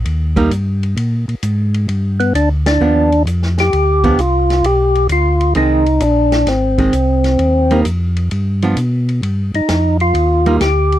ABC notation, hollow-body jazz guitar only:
X:1
M:4/4
L:1/8
Q:"Swing" 1/4=131
K:Cm
V:1 name="Hollow-body jazz guitar"
z [G,B,E] z6 | z4 [F,=B,D] z3 | z [F,=B,D] z6 | [E,A,C] z4 [E,A,C] z2 |
z [G,B,E] z3 [F,=B,D] z2 | z4 z [G,B,E] z2 |]